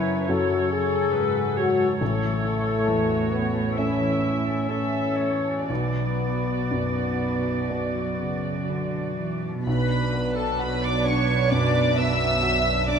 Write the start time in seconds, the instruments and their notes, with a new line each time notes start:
Already playing: harp F#2 C#3 F#3 F#4 C#5 F#5, grand piano F#2 C#3, cello section F#2, french horn section E4, viola section B4 C#5
0.07 harp A4
0.28 harp F#2, grand piano C#4 F#4 A4, french horn section F#4, viola section A4 C#5
0.49 harp C#3
0.70 harp F#4, french horn section G#4
0.92 harp A4
1.13 cello section G#2, viola section B4, harp C#5
1.36 harp F#5
1.57 french horn section F#4, harp C#5, viola section C#5
1.79 harp A4
2.00 grand piano A1, cello section A2, harp A2, french horn section A3, viola section A4 C#5
2.22 harp E3
2.43 harp E4
2.65 harp A4
2.87 grand piano E2, viola section F#4, harp C#5
3.09 harp E5
3.31 french horn section B3, harp C#5
3.54 harp A4
3.77 harp A2, french horn section C#4, grand piano C#4 E4 A4, viola section E4 E5
4.00 harp E3
4.23 harp E4, viola section E4
4.46 harp A4
4.69 french horn section C#4, viola section A4 E5, harp C#5
4.95 harp E5
5.19 harp C#5, viola section C#5
5.44 harp A4
5.68 grand piano B1, cello section B2, harp B2, french horn section B3, viola section F#4 D5
5.96 harp F#3
6.46 harp F#4
6.69 grand piano F#2, cello section B2, harp B4
6.96 harp F#5
7.21 harp B4
7.45 harp F#4
7.70 harp B2, grand piano B3 F#4 D5
7.94 harp F#3
8.17 cello section C#3
8.43 harp F#4
8.67 cello section D3, harp B4
9.17 cello section E3, harp B4
9.42 harp F#4
9.48 harp B2
9.53 harp B3
9.57 harp D4
9.62 double bass section B1, cello section B2, viola section D4, harp F#4, violin section B4
9.66 grand piano B1, french horn section F#3 D4, viola section B4, flute section B4, violin section B5
10.13 grand piano B3
10.34 flute section A4, violin section A4 A5
10.59 grand piano F#4, flute section B4, violin section B4 B5
10.81 flute section D5, violin section D5 D6
11.04 grand piano D4, flute section C#5, violin section C#5 C#6
11.49 grand piano F#2, flute section D5, violin section D5 D6
11.97 grand piano B3, flute section E5, violin section E5 E6
12.43 grand piano F#4
12.88 grand piano D4, flute section D5, violin section D5 D6